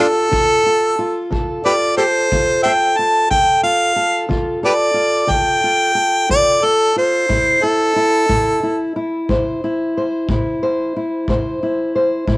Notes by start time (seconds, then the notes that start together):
Already playing: A4
0.00 F4 A4
0.31 D3 F4, kick
0.66 F4
0.99 F4
1.31 D3 A4, kick
1.65 F4 G4 B4 D5
1.97 G4 A4 C5
2.32 D3 F4, kick
2.63 A4 C5 E5 G5
2.97 F4 A5
3.31 D3 A4 G5, kick
3.63 F4 F5
3.96 A4
4.29 D3 F4, kick
4.63 G4 A4 B4 D5
4.94 F4
5.27 D3 A4, kick
5.31 G5
5.64 F4
5.95 A4
6.29 D3 F4 D5, kick
6.63 F4 A4
6.96 F4 C5
7.29 A2 E4, kick
7.63 E4 A4
7.96 E4
8.29 A2 E4, kick
8.63 E4
8.96 E4
9.29 A2 C5, kick
9.64 E4
9.97 C5
10.29 A2 E4, kick
10.63 C5
10.96 E4
11.28 A2 C5, kick
11.63 E4
11.95 C5
12.27 A2 E4, kick